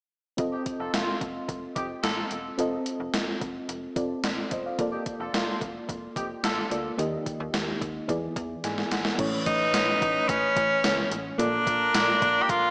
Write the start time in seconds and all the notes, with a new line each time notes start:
0.37 F1 C4 F4 A4 D#5, kick, closed hi-hat
0.52 C4 D#4 G4
0.66 kick, closed hi-hat
0.80 F1 D#4 F4 A4
0.93 F1 A3 C4 F4, snare, closed hi-hat
1.21 F1, kick, closed hi-hat
1.48 F1, kick, closed hi-hat
1.76 F1 C4 D#4 G4, kick, closed hi-hat
2.03 A1 D#4 F4 A4, snare, closed hi-hat
2.31 E1, closed hi-hat
2.58 F1 C4 F4 A4 D#5, closed hi-hat
2.86 closed hi-hat
3.00 F1
3.14 F1, snare, closed hi-hat
3.41 F1, kick, closed hi-hat
3.69 F1, closed hi-hat
3.96 F1 C4 F4 A4 D5, kick, closed hi-hat
4.24 A1 D5, snare, closed hi-hat
4.51 E1 C5 D#5, kick, closed hi-hat
4.66 D5 F5
4.78 F1 A#3 F4 A4 D5, kick, closed hi-hat
4.92 C4 D#4 G4
5.06 kick, closed hi-hat
5.20 F1 D4 F4 A4
5.33 F1 A#3 D4 F4, snare, closed hi-hat
5.61 F1, kick, closed hi-hat
5.89 F1, kick, closed hi-hat
6.16 F1 C4 D#4 G4, kick, closed hi-hat
6.43 A1 D4 F4 A4, snare, closed hi-hat
6.70 D2 A#3 F4 A4 D5, closed hi-hat
6.98 D#2 D#3 A#3 D#4 G4 D#5, closed hi-hat
7.26 kick, closed hi-hat
7.40 D#2
7.54 D#2, snare, closed hi-hat
7.81 D#2, kick, closed hi-hat
8.08 E2 E3 B3 E4 G#4 D5, kick, closed hi-hat
8.36 E2, kick, closed hi-hat
8.64 G#2 G#5, snare, closed hi-hat
8.78 snare
8.91 G#1 F#5, snare, closed hi-hat
9.05 snare
9.18 A1 A2 E3 A3 C#4 B4 C#5, kick, closed hi-hat, crash
9.46 A1 D#4, kick, closed hi-hat
9.74 A1, snare, closed hi-hat, tambourine
10.02 A1, kick, closed hi-hat
10.29 A1 C#4, kick, closed hi-hat
10.56 A1, kick, closed hi-hat
10.84 C#2, snare, closed hi-hat, tambourine
11.11 A1, closed hi-hat
11.38 A#1 A#2 A#3 D4 F4 A4 A#4 D5, closed hi-hat
11.67 A#1, kick, closed hi-hat
11.95 A#1, snare, closed hi-hat, tambourine
12.22 A#1, kick, closed hi-hat
12.42 G4
12.49 A#1 F4, kick, closed hi-hat